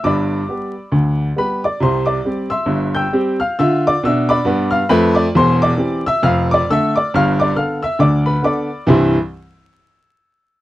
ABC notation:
X:1
M:4/4
L:1/8
Q:"Swing" 1/4=136
K:C
V:1 name="Upright piano"
[dbd']6 [Bb] [dd'] | [cc'] [dd']2 [ec'e']2 [ge'g']2 [ff'] | [ee'] [dd'] [ee'] [dbd']2 [ff'] [Bb] [dd'] | [cc'] [dd']2 [ee'] [ff'] [dd'] [ee'] [dd'] |
[ff'] [dd'] [ff'] [ee'] [dd'] [Bb] [dbd']2 | [C,,G,,E,G,CEc'] z6 z |]
V:2 name="Upright piano" clef=bass
[G,,,G,,]2 [G,B,G]2 [D,,D,]2 [G,B,G]2 | [C,,C,]2 [G,CG]2 [G,,,G,,]2 [G,CG]2 | [D,F]2 [B,,D]2 [G,,B,]2 [F,,A,]2 | [E,,,E,,]2 [E,CG]2 [F,,,F,,]2 [D,A,A]2 |
[G,,,G,,]2 [D,B,A]2 [D,,D,]2 [D,B,A]2 | z8 |]